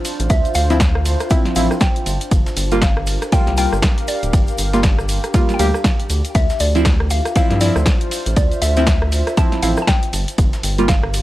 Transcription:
Already playing: analog synth pad D4 F4 C5, synth pluck D5
0.00 analog synth pad F5
0.05 open hi-hat, ride, shaker
0.20 analog synth bass A1, closed hi-hat, shaker
0.30 analog synth bass D2, synth pluck E5, kick, closed hi-hat, ride, shaker
0.45 closed hi-hat, shaker
0.54 analog synth bass D2, synth pluck F5, open hi-hat, ride, shaker
0.70 synth stab F3 C4 E4, snare, closed hi-hat, shaker
0.80 kick, snare, closed hi-hat, ride, shaker
0.95 cross-stick
1.05 open hi-hat, ride, shaker
1.20 cross-stick, closed hi-hat, shaker
1.30 synth stab F3 C4 E4, synth pluck E5, kick, closed hi-hat, ride, shaker
1.45 snare, closed hi-hat
1.56 analog synth bass A1, synth stab F3 C4 E4, synth pluck F5, open hi-hat, ride, shaker
1.71 cross-stick, shaker
1.80 synth pluck G5, kick, snare, closed hi-hat, ride, shaker
1.96 closed hi-hat
2.06 analog synth bass G1, open hi-hat, ride, shaker
2.21 closed hi-hat, shaker
2.32 analog synth bass G1, kick, closed hi-hat, ride, shaker
2.46 snare, closed hi-hat, shaker
2.56 analog synth bass G1, analog synth pad G4, open hi-hat, ride, shaker
2.71 synth stab G3 A#3 F4, closed hi-hat, shaker
2.78 analog synth pad A#4, snare
2.82 synth pluck F5, kick, snare, closed hi-hat, ride, shaker
2.97 cross-stick
3.07 open hi-hat, ride, shaker
3.16 analog synth pad F5
3.22 cross-stick, closed hi-hat, shaker
3.32 synth stab G3 A#3 F4, synth pluck G5, kick, closed hi-hat, open hi-hat, shaker
3.47 analog synth bass C2, snare, closed hi-hat
3.57 synth stab G3 A#3 F4, synth pluck G5, open hi-hat, ride, shaker
3.72 analog synth bass G1, cross-stick, shaker
3.82 kick, snare, closed hi-hat, ride, shaker
3.98 closed hi-hat
4.08 synth pluck D5, open hi-hat, ride, shaker
4.23 analog synth bass D1, closed hi-hat, shaker
4.33 analog synth bass G1, kick, closed hi-hat, ride, shaker
4.47 closed hi-hat, shaker
4.58 analog synth bass G1, open hi-hat, ride, shaker
4.73 synth stab G3 A#3 F4, snare, closed hi-hat, shaker
4.83 kick, snare, closed hi-hat, ride, shaker
4.99 cross-stick, shaker
5.09 open hi-hat, ride, shaker
5.24 cross-stick, closed hi-hat, shaker
5.34 synth stab G3 A#3 F4, kick, closed hi-hat, ride, shaker
5.49 snare, closed hi-hat, shaker
5.54 synth pluck G5
5.59 analog synth bass D2, synth stab G3 A#3 G4, synth pluck F5, open hi-hat, ride, shaker
5.74 cross-stick, shaker
5.84 kick, snare, closed hi-hat, ride, shaker
6.00 closed hi-hat
6.10 analog synth bass D2, open hi-hat, ride, shaker
6.25 closed hi-hat, shaker
6.35 analog synth bass D2, synth pluck E5, kick, closed hi-hat, ride, shaker
6.50 snare, closed hi-hat, shaker
6.60 analog synth bass D2, synth pluck D5, open hi-hat, ride, shaker
6.75 synth stab F3 C4 E4, closed hi-hat, shaker
6.83 analog synth pad F4, kick, snare, closed hi-hat, ride, shaker
7.00 cross-stick
7.10 synth pluck F5, open hi-hat, ride, shaker
7.25 analog synth pad C5, cross-stick, closed hi-hat, shaker
7.36 synth stab F3 C4 E4, synth pluck F5, kick, closed hi-hat, open hi-hat, shaker
7.50 analog synth bass G2, snare, closed hi-hat
7.61 synth stab F3 C4 E4, synth pluck D5, open hi-hat, ride, shaker
7.76 analog synth bass D2, cross-stick, shaker
7.86 kick, snare, closed hi-hat, ride, shaker
8.01 closed hi-hat
8.06 analog synth pad E5
8.11 open hi-hat, ride, shaker
8.26 analog synth bass A1, closed hi-hat, shaker
8.37 analog synth bass D2, synth pluck D5, kick, closed hi-hat, ride, shaker
8.52 closed hi-hat, shaker
8.62 analog synth bass D2, synth pluck E5, open hi-hat, ride, shaker
8.76 synth stab F3 C4 E4, snare, closed hi-hat, shaker
8.87 kick, snare, closed hi-hat, ride, shaker
9.02 cross-stick
9.12 open hi-hat, ride, shaker
9.27 cross-stick, closed hi-hat, shaker
9.37 synth stab F3 C4 E4, synth pluck A5, kick, closed hi-hat, ride, shaker
9.52 snare, closed hi-hat
9.63 analog synth bass A1, synth stab F3 C4 E4, synth pluck F5, open hi-hat, ride, shaker
9.77 cross-stick, shaker
9.82 synth pluck A5
9.87 synth pluck G5, kick, snare, closed hi-hat, ride, shaker
10.03 closed hi-hat
10.13 analog synth bass G1, open hi-hat, ride, shaker
10.28 closed hi-hat, shaker
10.38 analog synth bass G1, kick, closed hi-hat, ride, shaker
10.42 analog synth pad A#4
10.53 analog synth pad G4, snare, closed hi-hat, shaker
10.63 analog synth bass G1, open hi-hat, ride, shaker
10.78 synth stab G3 A#3 F4, closed hi-hat, shaker
10.85 analog synth pad F5, synth pluck F5, kick, snare, closed hi-hat, ride, shaker
11.03 cross-stick
11.14 open hi-hat, ride, shaker

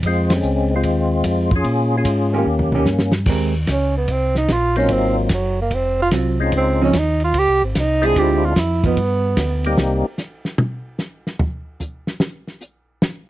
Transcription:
0.03 tonewheel organ F2 G#3, kick, ride
0.07 tonewheel organ C4 F4
0.30 snare, ride
0.36 tonewheel organ G#3 C#4
0.43 tonewheel organ C#2, hi-hat pedal
0.76 tonewheel organ G#3 C4 F4
0.83 tonewheel organ D#2, kick, ride
1.24 tonewheel organ F2, kick, hi-hat pedal, ride
1.51 kick
1.56 tonewheel organ C#4 F4 G#4
1.64 tonewheel organ A#2, kick, ride
1.97 tonewheel organ C#4 F4 G#4
2.05 tonewheel organ G#2, kick, hi-hat pedal, ride
2.33 hollow-body jazz guitar D#3 A#3 C#4 G4
2.38 tonewheel organ A#3 C#4 G4
2.46 tonewheel organ D#2
2.59 floor tom
2.72 hollow-body jazz guitar D#3 A#3 C#4 G4, floor tom
2.85 tonewheel organ G2, snare, hi-hat pedal
2.99 snare
3.12 snare
3.26 tonewheel organ D#2, hollow-body jazz guitar G#3 C4 G4 A#4, kick, crash
3.67 tonewheel organ C#2, kick, snare, hi-hat pedal, ride
3.71 tenor saxophone C#4
3.97 tenor saxophone B3
4.07 tonewheel organ C2, tenor saxophone C4, kick, ride
4.35 tenor saxophone D#4, snare
4.48 tonewheel organ A#1, kick, snare, hi-hat pedal, ride
4.52 tenor saxophone F4
4.76 tonewheel organ F#3 A#3 C4 D#4 F4, tenor saxophone C#4, ride
4.89 tonewheel organ G#1, tenor saxophone C4, kick, ride
5.18 tenor saxophone D#3
5.29 tonewheel organ F#1, kick, snare, hi-hat pedal, ride
5.33 tenor saxophone F#3
5.61 tenor saxophone A#3
5.71 tonewheel organ F1, tenor saxophone C4, kick, ride
6.02 tenor saxophone F4
6.11 tonewheel organ C2, hollow-body jazz guitar F#3 C4 F4, kick, snare, hi-hat pedal, ride
6.40 tonewheel organ G#3 C4 C#4 D#4 F4
6.52 tonewheel organ C#2, kick, ride
6.57 tenor saxophone C4
6.81 hollow-body jazz guitar F3 C4 D#4, tenor saxophone C#4
6.93 tonewheel organ D#2, kick, snare, hi-hat pedal, ride
6.98 tenor saxophone D#4
7.20 tenor saxophone F4, ride
7.34 tonewheel organ C#2, kick, ride
7.38 tenor saxophone G4
7.48 tonewheel organ C2
7.62 tonewheel organ G#1, tenor saxophone C4
7.75 tonewheel organ C2, kick, snare, hi-hat pedal, ride
7.79 tenor saxophone D#4
8.02 tonewheel organ G#3 C4 D4 E4 F4, tenor saxophone G#4, ride
8.16 tonewheel organ D2, hollow-body jazz guitar D3 G#3 C4 F4, tenor saxophone G4, kick, ride
8.45 tenor saxophone F4
8.56 tonewheel organ F2, tenor saxophone E4, kick, snare, hi-hat pedal, ride
8.84 hollow-body jazz guitar F3 B3 D#4, tenor saxophone B3, kick, ride
8.97 tonewheel organ G2, kick, ride
9.37 tonewheel organ D2, kick, snare, hi-hat pedal, ride
9.64 tonewheel organ G3 A#3 C4 D#4 G4, ride
9.77 tonewheel organ C2, snare
10.18 snare, hi-hat pedal
10.45 snare
10.58 high tom
10.98 snare, hi-hat pedal
11.27 snare
11.39 floor tom
11.80 floor tom, hi-hat pedal
12.07 snare
12.20 snare
12.47 snare
12.61 hi-hat pedal
13.02 snare

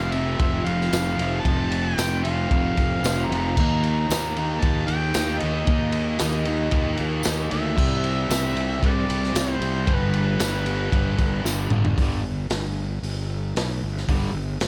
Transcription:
Already playing: fingered electric bass F1, distorted electric guitar F2 C3 F3, harmonica F5
0.12 distorted electric guitar F2 C3 F3, harmonica E5, ride
0.39 fingered electric bass F1, distorted electric guitar F2 C3 F3, kick, ride
0.65 fingered electric bass F1, harmonica F5, ride
0.81 snare
0.92 fingered electric bass F1, distorted electric guitar F2 C3 F3, snare, ride, tambourine
1.19 fingered electric bass F1, distorted electric guitar F2 C3 F3, ride
1.40 harmonica A5
1.44 fingered electric bass F1, distorted electric guitar F2 C3 F3, kick, ride
1.72 ride
1.82 harmonica G5
1.97 fingered electric bass F1, distorted electric guitar F2 C3 F3, snare, ride, tambourine
2.24 distorted electric guitar F2 C3 F3, harmonica F5, ride
2.50 fingered electric bass F1, distorted electric guitar F2 C3 F3, kick, ride
2.77 fingered electric bass F1, kick, ride
3.02 fingered electric bass F1, distorted electric guitar F2 C3 F3, snare, ride, tambourine
3.26 fingered electric bass F1, harmonica A#5
3.31 distorted electric guitar F2 C3 F3, ride
3.57 fingered electric bass D#2, distorted electric guitar D#3 A#3, kick, crash
3.62 distorted electric guitar D#4
3.83 ride
4.09 fingered electric bass D#2, distorted electric guitar D#3 A#3, snare, ride, tambourine
4.14 distorted electric guitar D#4
4.36 distorted electric guitar D#3 A#3 D#4, ride
4.59 fingered electric bass D#2, harmonica A5, kick, ride
4.64 distorted electric guitar D#3 A#3 D#4
4.87 fingered electric bass D#2, harmonica G5, ride
5.14 fingered electric bass D#2, distorted electric guitar D#3 A#3 D#4, snare, ride, tambourine
5.39 fingered electric bass D#2, distorted electric guitar D#3, harmonica D#5, ride
5.44 distorted electric guitar A#3 D#4
5.67 fingered electric bass D#2, distorted electric guitar D#3 A#3 D#4, kick, ride
5.92 ride
6.19 fingered electric bass D#2, distorted electric guitar D#3 A#3 D#4, snare, ride, tambourine
6.45 distorted electric guitar D#3 A#3 D#4, ride
6.71 fingered electric bass D#2, distorted electric guitar D#3 A#3 D#4, kick, ride
6.97 fingered electric bass D#2, ride
7.23 fingered electric bass D#2, distorted electric guitar D#3 A#3 D#4, snare, ride, tambourine
7.50 fingered electric bass D2, distorted electric guitar D#3 A#3 D#4, harmonica E5, ride
7.76 fingered electric bass C2, distorted electric guitar C3 G3 C4, kick, crash
8.04 ride
8.29 fingered electric bass C2, distorted electric guitar C3 G3 C4, snare, ride, tambourine
8.54 distorted electric guitar C3 G3 C4, ride
8.82 fingered electric bass C2, distorted electric guitar C3 G3 C4, harmonica A4 B4 D5, kick, ride
9.08 fingered electric bass C2, ride
9.24 snare
9.33 fingered electric bass C2, distorted electric guitar C3 G3 C4, snare, ride, tambourine
9.39 harmonica C5
9.60 fingered electric bass C2, distorted electric guitar C3 G3 C4, ride
9.86 fingered electric bass G1, distorted electric guitar G2 D3 G3, kick, ride
9.94 harmonica B4
10.13 ride
10.38 fingered electric bass G1, distorted electric guitar G2 D3 G3, snare, ride, tambourine
10.65 distorted electric guitar G2 D3 G3, ride
10.92 fingered electric bass G1, distorted electric guitar G2 D3 G3, kick, ride
11.18 fingered electric bass G1, kick, ride
11.44 fingered electric bass G1, distorted electric guitar G2 D3 G3, snare, tambourine
11.70 fingered electric bass G1, distorted electric guitar G2 D3 G3, mid tom
11.85 floor tom
11.97 fingered electric bass G1, distorted electric guitar G2 D3, kick, open hi-hat
12.02 distorted electric guitar G3
12.50 fingered electric bass G1, snare, open hi-hat
13.03 fingered electric bass G1, open hi-hat
13.55 fingered electric bass B1, snare, open hi-hat
13.82 fingered electric bass G1
13.97 snare
14.08 fingered electric bass G1, distorted electric guitar G2 D3 G3, kick, open hi-hat
14.34 fingered electric bass G1
14.60 fingered electric bass G1, snare, open hi-hat

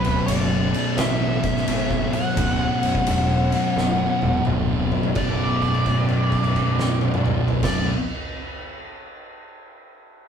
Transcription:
Already playing: distorted electric guitar B1 F#2 B2, lead electric guitar B4
0.04 fingered electric bass D1, ride
0.26 fingered electric bass F#1, lead electric guitar D5, ride
0.73 distorted electric guitar F#2 B2, ride
0.77 distorted electric guitar B1
0.97 fingered electric bass A1, lead electric guitar E5, snare, ride
1.43 kick, ride
1.57 snare
1.68 fingered electric bass G#1, ride
1.90 kick
2.13 lead electric guitar F#5, ride
2.36 fingered electric bass D1, distorted electric guitar B1 F#2 B2, kick, ride
2.83 fingered electric bass B0, ride
2.95 kick
3.07 fingered electric bass E1, ride
3.52 distorted electric guitar B1 F#2 B2, ride
3.76 fingered electric bass B0, snare
4.22 fingered electric bass E1, high tom
4.33 high tom
4.45 fingered electric bass D1, mid tom
4.92 floor tom
5.03 floor tom
5.15 fingered electric bass B0, distorted electric guitar B1 F#2 B2, lead electric guitar D5, kick, crash
5.62 kick, crash
5.74 crash
5.86 kick, crash
6.09 crash
6.32 kick, crash
6.44 crash
6.56 kick, crash
6.79 snare
7.01 high tom
7.14 mid tom
7.26 mid tom
7.48 floor tom
7.62 fingered electric bass B0, distorted electric guitar B1 F#2, lead electric guitar D5, kick, snare, crash
7.66 distorted electric guitar B2

